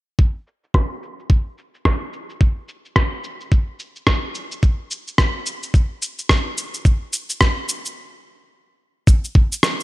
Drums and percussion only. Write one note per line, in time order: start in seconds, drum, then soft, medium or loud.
0.19 kick medium
0.47 shaker medium
0.64 shaker soft
0.74 kick medium
0.74 cross-stick medium
1.03 shaker medium
1.19 shaker soft
1.30 kick medium
1.58 shaker medium
1.74 shaker soft
1.85 kick medium
1.85 cross-stick medium
2.13 shaker medium
2.30 shaker soft
2.41 kick medium
2.41 shaker soft
2.68 shaker medium
2.85 shaker soft
2.96 kick medium
2.96 cross-stick medium
2.96 shaker soft
3.24 shaker medium
3.40 shaker soft
3.52 kick medium
3.52 shaker soft
3.79 shaker medium
3.96 shaker soft
4.07 kick medium
4.07 cross-stick medium
4.07 shaker soft
4.35 shaker medium
4.51 shaker soft
4.63 kick loud
4.63 shaker soft
4.91 shaker medium
5.07 shaker soft
5.18 kick loud
5.18 cross-stick medium
5.18 shaker soft
5.46 shaker medium
5.63 shaker soft
5.74 kick medium
5.74 shaker soft
6.02 shaker medium
6.19 shaker soft
6.29 kick medium
6.29 cross-stick medium
6.29 shaker soft
6.57 shaker medium
6.74 shaker soft
6.85 kick loud
6.85 shaker soft
7.13 shaker medium
7.29 shaker soft
7.41 kick loud
7.41 cross-stick medium
7.41 shaker soft
7.69 shaker medium
7.85 shaker soft
9.07 kick loud
9.07 shaker soft
9.24 shaker soft
9.35 kick loud
9.52 shaker medium
9.63 cross-stick loud
9.63 shaker soft
9.80 shaker soft